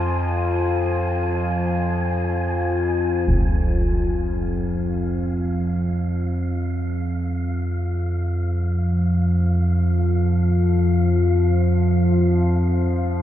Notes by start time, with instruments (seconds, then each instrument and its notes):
Already playing: synth drone F2 F3, cello section F3 C4 F4, synth texture G#5
3.28 synth drone F2 F3, synth texture F5, concert bass drum